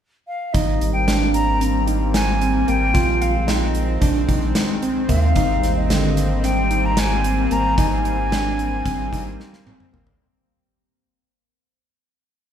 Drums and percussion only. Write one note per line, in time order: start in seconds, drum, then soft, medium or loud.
0.54 kick medium
0.54 closed hi-hat medium
0.81 closed hi-hat medium
1.08 snare medium
1.08 closed hi-hat medium
1.34 closed hi-hat medium
1.61 closed hi-hat medium
1.87 closed hi-hat medium
2.14 snare medium
2.14 closed hi-hat medium
2.41 closed hi-hat medium
2.68 closed hi-hat medium
2.94 kick medium
2.94 closed hi-hat medium
3.22 closed hi-hat medium
3.48 snare medium
3.48 closed hi-hat medium
3.75 closed hi-hat medium
4.01 kick medium
4.01 closed hi-hat medium
4.29 kick medium
4.29 closed hi-hat soft
4.55 snare medium
4.55 closed hi-hat medium
4.82 closed hi-hat medium
5.09 kick medium
5.09 closed hi-hat medium
5.36 kick medium
5.36 closed hi-hat medium
5.63 snare soft
5.63 closed hi-hat medium
5.90 snare medium
5.90 closed hi-hat medium
6.17 snare soft
6.17 closed hi-hat medium
6.44 snare soft
6.44 closed hi-hat medium
6.71 closed hi-hat medium
6.97 snare medium
6.97 closed hi-hat medium
7.24 closed hi-hat medium
7.51 closed hi-hat medium
7.78 kick medium
7.78 closed hi-hat medium
8.05 closed hi-hat medium
8.32 snare medium
8.32 closed hi-hat medium
8.59 closed hi-hat medium
8.86 kick medium
8.86 closed hi-hat medium
9.13 kick medium
9.13 closed hi-hat medium
9.40 snare soft
9.53 snare soft
9.67 high tom medium
9.80 mid tom medium
9.94 mid tom medium
10.07 floor tom medium